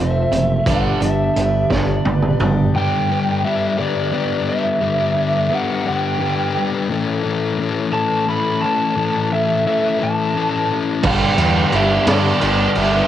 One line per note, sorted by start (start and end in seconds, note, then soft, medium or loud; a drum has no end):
0.00 0.24 F1 medium
0.00 0.28 F2 medium
0.00 0.29 C3 medium
0.00 0.33 F3 medium
0.00 0.33 A3 medium
0.00 0.32 C4 medium
0.00 0.30 F4 medium
0.00 0.71 E5 loud
0.31 0.59 F#1 medium
0.31 0.63 F2 medium
0.31 0.63 C3 medium
0.31 0.66 F3 medium
0.31 0.66 A3 medium
0.31 0.65 C4 medium
0.31 0.65 F4 medium
0.31 closed hi-hat medium
0.66 0.94 G1 medium
0.66 0.99 G2 medium
0.66 1.36 G2 medium
0.66 1.37 D3 loud
0.66 1.00 D3 loud
0.66 1.00 G3 loud
0.66 1.03 G3 loud
0.66 1.02 B3 loud
0.66 1.01 D4 loud
0.66 0.99 G4 loud
0.66 1.00 F#5 loud
0.66 kick loud
0.66 closed hi-hat loud
1.01 1.29 G1 medium
1.01 1.33 G2 medium
1.01 1.33 D3 medium
1.01 1.35 G3 medium
1.01 1.36 B3 medium
1.01 1.37 D4 medium
1.01 1.38 G4 medium
1.01 1.68 E5 medium
1.01 closed hi-hat medium
1.36 1.64 G1 medium
1.36 1.68 G2 medium
1.36 1.68 D3 medium
1.36 1.73 G3 medium
1.36 1.72 B3 medium
1.36 1.71 D4 medium
1.36 1.70 G4 medium
1.36 closed hi-hat medium
1.70 1.98 G1 medium
1.70 2.02 G2 medium
1.70 2.02 D3 medium
1.70 2.06 B3 medium
1.70 2.07 D4 medium
1.70 2.08 G4 medium
1.70 2.46 D5 medium
1.70 kick medium
1.70 snare medium
1.74 2.04 G3 medium
2.05 2.33 G1 medium
2.05 2.37 G2 medium
2.05 2.37 D3 medium
2.05 2.42 G3 medium
2.05 2.41 B3 medium
2.05 2.40 D4 medium
2.05 2.38 G4 medium
2.05 high tom medium
2.22 mid tom medium
2.40 2.68 G1 medium
2.40 2.72 G2 medium
2.40 2.72 D3 medium
2.40 2.75 G3 medium
2.40 2.74 B3 medium
2.40 2.74 D4 medium
2.40 2.73 G4 medium
2.40 mid tom medium
2.75 3.80 G2 medium
2.75 3.45 D3 medium
2.75 3.12 G3 medium
2.75 3.11 B3 medium
2.75 3.10 D4 loud
2.75 3.09 G4 loud
2.75 3.47 G5 loud
3.09 3.43 G3 medium
3.09 3.45 B3 medium
3.09 3.45 D4 medium
3.09 3.46 G4 medium
3.44 3.78 G3 medium
3.44 3.77 B3 medium
3.44 3.77 D4 medium
3.44 3.76 G4 medium
3.44 3.79 E5 medium
3.77 4.49 G2 medium
3.77 4.49 D3 medium
3.77 4.10 G3 medium
3.77 4.12 B3 medium
3.77 4.12 D4 medium
3.77 4.14 G4 medium
3.77 4.49 D5 medium
4.11 4.80 G3 medium
4.11 4.82 B3 medium
4.11 4.82 D4 medium
4.11 4.83 G4 loud
4.49 5.56 E5 loud
4.81 5.52 G2 medium
4.81 5.52 D3 loud
4.81 5.17 G3 loud
4.81 5.16 B3 loud
4.81 5.15 D4 loud
4.81 5.14 G4 loud
5.15 5.49 G3 medium
5.15 5.50 B3 medium
5.15 5.51 D4 medium
5.15 5.52 G4 medium
5.50 5.86 G3 medium
5.50 5.86 B3 medium
5.50 5.85 D4 medium
5.50 5.85 G4 medium
5.54 5.88 F#5 medium
5.86 6.57 G2 medium
5.86 6.57 D3 medium
5.86 6.19 G3 medium
5.86 6.20 B3 medium
5.86 6.21 D4 medium
5.86 6.21 G4 medium
5.86 6.62 G5 medium
6.20 6.88 G3 medium
6.20 6.88 B3 medium
6.20 6.89 D4 medium
6.20 6.89 G4 medium
6.89 7.95 A2 loud
6.89 7.93 E3 loud
6.89 7.26 A3 loud
6.89 7.25 C#4 loud
6.89 7.24 E4 loud
6.89 7.23 A4 loud
7.23 7.58 A3 medium
7.23 7.60 C#4 medium
7.23 7.60 E4 medium
7.23 7.60 A4 medium
7.58 7.92 A3 medium
7.58 7.92 C#4 medium
7.58 7.91 E4 medium
7.58 7.91 A4 medium
7.92 8.64 A2 medium
7.92 8.63 E3 medium
7.92 8.25 A3 medium
7.92 8.27 C#4 medium
7.92 8.27 E4 medium
7.92 8.29 A4 medium
7.92 8.29 A5 loud
8.26 8.96 A3 medium
8.26 8.97 C#4 medium
8.26 8.97 E4 medium
8.26 8.97 A4 loud
8.26 8.64 B5 loud
8.61 9.34 A5 loud
8.96 9.66 A2 medium
8.96 9.66 E3 loud
8.96 9.32 A3 loud
8.96 9.31 C#4 loud
8.96 9.30 E4 loud
8.96 9.29 A4 loud
9.30 9.63 A3 medium
9.30 9.64 C#4 medium
9.30 9.65 E4 medium
9.30 9.66 A4 medium
9.30 9.66 E5 loud
9.65 9.99 A3 medium
9.65 9.99 C#4 medium
9.65 9.99 E4 medium
9.65 9.98 A4 medium
9.65 10.02 E5 medium
9.99 10.71 A2 medium
9.99 10.70 E3 medium
9.99 10.33 A3 medium
9.99 10.34 C#4 medium
9.99 10.35 E4 medium
9.99 10.36 A4 loud
10.03 10.76 A5 loud
10.35 11.02 A3 medium
10.35 11.03 C#4 medium
10.35 11.03 E4 medium
10.35 11.03 A4 medium
11.03 11.28 G1 medium
11.03 12.10 G2 medium
11.03 11.74 D3 loud
11.03 11.41 G3 loud
11.03 11.40 B3 loud
11.03 11.38 D4 loud
11.03 11.38 G4 loud
11.03 11.71 G5 loud
11.03 kick loud
11.03 crash loud
11.38 11.62 E2 medium
11.38 11.71 G3 medium
11.38 11.72 B3 medium
11.38 11.73 D4 medium
11.38 11.74 G4 medium
11.38 ride medium
11.71 11.97 G1 medium
11.71 12.08 G3 medium
11.71 12.07 B3 medium
11.71 12.08 D4 medium
11.71 12.06 G4 medium
11.71 12.08 E5 medium
11.71 ride medium
12.07 12.31 G2 medium
12.07 12.78 G2 medium
12.07 12.78 D3 medium
12.07 12.40 G3 medium
12.07 12.41 B3 medium
12.07 12.42 D4 medium
12.07 12.43 G4 medium
12.07 12.41 D5 medium
12.07 snare loud
12.07 ride loud
12.41 12.66 G1 medium
12.41 13.07 G3 medium
12.41 13.07 B3 medium
12.41 13.07 D4 medium
12.41 13.07 G4 medium
12.41 12.78 D5 medium
12.41 ride medium
12.75 13.01 G1 loud
12.75 13.07 G3 medium
12.75 13.07 B3 medium
12.75 13.07 D4 medium
12.75 13.07 G4 medium
12.75 13.07 E5 loud
12.75 ride medium